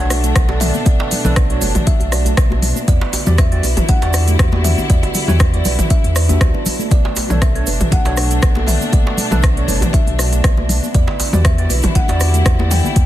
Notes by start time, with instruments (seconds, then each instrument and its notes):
Already playing: string section B2 A3 D4, kalimba F#5
0.00 sub bass B1, tine electric piano D4 A4 C#5
0.10 handpan F#4, cross-stick, open hi-hat, shaker
0.24 handpan A3, closed hi-hat, shaker
0.35 sub bass B1, kick, cross-stick, closed hi-hat, djembe tone, shaker
0.49 tine electric piano D4 A4 D5, djembe slap, muted conga, high conga
0.60 kalimba E5, open hi-hat, mid tom, djembe tone, shaker
0.74 handpan B3, high conga, shaker
0.86 sub bass B1, handpan B3, kalimba D5, kick, closed hi-hat, muted conga, high conga, shaker
0.99 djembe slap, djembe tone
1.11 open hi-hat, low conga, shaker
1.25 sub bass B1, handpan B3, tine electric piano D4 A4 B4, mid tom, muted conga, djembe tone, low conga, shaker
1.36 handpan B3, kick, cross-stick, closed hi-hat, shaker
1.50 handpan F#3, tine electric piano D4 A4 C#5, closed hi-hat
1.61 sub bass F#1, handpan B4, open hi-hat, muted conga, djembe tone, low conga, shaker
1.75 handpan F#3, closed hi-hat, mid tom, djembe bass, shaker
1.87 handpan D4, kalimba E5, kick, closed hi-hat, djembe tone, shaker
2.00 sub bass B1, closed hi-hat, muted conga
2.12 handpan F#4, kalimba D5, cross-stick, open hi-hat, shaker
2.25 handpan A3, closed hi-hat, djembe tone, shaker
2.37 sub bass B1, kick, cross-stick, closed hi-hat, shaker
2.50 muted conga, high conga, djembe tone
2.62 open hi-hat, low conga, shaker
2.76 handpan B3, high conga, shaker
2.88 sub bass E2, string section D3 E4, handpan B3, kalimba D5, kick, closed hi-hat, muted conga, djembe tone, shaker
3.01 djembe slap
3.13 open hi-hat, djembe slap, djembe tone, shaker
3.26 sub bass E2, handpan B3, tine electric piano F#4 G4 D5, mid tom, muted conga, low conga, shaker
3.38 kalimba E5, kick, cross-stick, closed hi-hat, shaker
3.52 handpan F#3, tine electric piano F#4 G4 D5, closed hi-hat, djembe tone
3.63 sub bass B1, handpan B4, open hi-hat, muted conga, shaker
3.77 handpan F#3, closed hi-hat, mid tom, djembe tone, djembe bass, shaker
3.88 handpan D4, kalimba F#5, kick, closed hi-hat, high conga, djembe bass, shaker
4.02 sub bass E2, tine electric piano F#4 G4 D5, closed hi-hat, muted conga, djembe slap
4.13 handpan F#4, cross-stick, open hi-hat, djembe tone, shaker
4.28 handpan A3, closed hi-hat, shaker
4.39 sub bass E2, kick, cross-stick, closed hi-hat, djembe tone, shaker
4.52 tine electric piano F#4 G4 D5, muted conga, djembe slap, high conga
4.64 kalimba E5, open hi-hat, mid tom, shaker
4.78 handpan B3, djembe tone, high conga, shaker
4.90 sub bass E2, handpan B3, kalimba D5, kick, closed hi-hat, muted conga, high conga, shaker
5.03 closed hi-hat, djembe slap, djembe tone
5.14 open hi-hat, low conga, shaker
5.28 sub bass E2, handpan B3, tine electric piano F#4 G4 C#5, mid tom, muted conga, low conga, shaker
5.39 kick, cross-stick, closed hi-hat, djembe tone, shaker
5.54 handpan F#3, tine electric piano F#4 G4 D5, closed hi-hat
5.65 sub bass B1, handpan B4, open hi-hat, muted conga, djembe tone, low conga, shaker
5.79 handpan F#3, closed hi-hat, mid tom, djembe bass, shaker
5.90 handpan D4, kalimba E5, kick, closed hi-hat, shaker
6.04 sub bass E2, closed hi-hat, muted conga, djembe tone
6.16 handpan B4, kalimba D5, cross-stick, open hi-hat, shaker
6.29 handpan D4, tine electric piano F#4 G4 E5, closed hi-hat, djembe tone, high conga, shaker
6.41 sub bass D2, handpan F#3, kick, cross-stick, closed hi-hat, shaker
6.54 handpan B3, muted conga, high conga
6.66 open hi-hat, djembe tone, low conga, shaker
6.79 handpan A3, high conga, shaker
6.91 sub bass B1, string section B2 A3 D4, handpan B3, kalimba D5, kick, closed hi-hat, muted conga, shaker
7.05 djembe slap
7.16 open hi-hat, djembe slap, djembe tone, shaker
7.29 sub bass B1, handpan B3, tine electric piano D4 A4 C#5, mid tom, muted conga, low conga, shaker
7.41 handpan B3, kalimba E5, kick, cross-stick, closed hi-hat, djembe tone, shaker
7.55 handpan B3, tine electric piano D4 A4 C#5, closed hi-hat
7.67 sub bass F#1, handpan B4, open hi-hat, muted conga, shaker
7.80 handpan F#3, closed hi-hat, mid tom, djembe tone, djembe bass, shaker
7.91 handpan D4, kalimba F#5, kick, closed hi-hat, high conga, djembe bass, shaker
8.05 sub bass B1, tine electric piano D4 A4 C#5, closed hi-hat, muted conga, djembe slap, djembe tone
8.17 handpan F#4, cross-stick, open hi-hat, shaker
8.30 handpan A3, closed hi-hat, shaker
8.42 sub bass B1, handpan B3, kick, cross-stick, closed hi-hat, djembe tone, shaker
8.55 tine electric piano D4 A4 D5, djembe slap, muted conga, high conga
8.67 kalimba E5, open hi-hat, mid tom, djembe tone, shaker
8.81 handpan B3, high conga, shaker
8.92 sub bass B1, handpan B3, kalimba D5, kick, closed hi-hat, muted conga, high conga, shaker
9.06 djembe slap, djembe tone
9.17 open hi-hat, low conga, shaker
9.31 sub bass B1, handpan B3, tine electric piano D4 A4 B4, mid tom, muted conga, djembe tone, low conga, shaker
9.42 handpan B3, kick, cross-stick, closed hi-hat, shaker
9.56 handpan B3, tine electric piano D4 A4 C#5, closed hi-hat
9.68 sub bass F#1, handpan B4, open hi-hat, muted conga, djembe tone, low conga, shaker
9.81 handpan F#3, closed hi-hat, mid tom, djembe bass, shaker
9.93 handpan D4, kalimba E5, kick, closed hi-hat, djembe tone, shaker
10.07 sub bass B1, closed hi-hat, muted conga
10.19 handpan F#4, kalimba D5, cross-stick, open hi-hat, shaker
10.32 handpan A3, closed hi-hat, djembe tone, shaker
10.44 sub bass B1, kick, cross-stick, closed hi-hat, shaker
10.57 muted conga, djembe tone, high conga
10.69 open hi-hat, low conga, shaker
10.83 handpan B3, high conga, shaker
10.94 sub bass E2, string section D3 E4, handpan B3, kalimba D5, kick, closed hi-hat, muted conga, djembe tone, shaker
11.07 djembe slap
11.20 open hi-hat, djembe slap, djembe tone, shaker
11.33 sub bass E2, handpan B3, tine electric piano F#4 G4 D5, mid tom, muted conga, low conga, shaker
11.45 handpan B3, kalimba E5, kick, cross-stick, closed hi-hat, shaker
11.58 handpan B3, tine electric piano F#4 G4 D5, closed hi-hat, djembe tone
11.70 sub bass B1, handpan B4, open hi-hat, muted conga, shaker
11.82 handpan F#3, closed hi-hat, mid tom, djembe tone, djembe bass, shaker
11.95 handpan D4, kalimba F#5, kick, closed hi-hat, high conga, djembe bass, shaker
12.08 sub bass E2, tine electric piano F#4 G4 D5, closed hi-hat, muted conga, djembe slap
12.20 handpan F#4, cross-stick, open hi-hat, djembe tone, shaker
12.34 handpan A3, closed hi-hat, shaker
12.45 sub bass E2, handpan B3, kick, cross-stick, closed hi-hat, djembe tone, shaker
12.59 tine electric piano E4 G4 D5, muted conga, djembe slap, high conga
12.71 kalimba G5, open hi-hat, mid tom, shaker
12.84 handpan B3, high conga, djembe tone, shaker
12.96 sub bass E2, handpan B3, kick, closed hi-hat, muted conga, high conga, shaker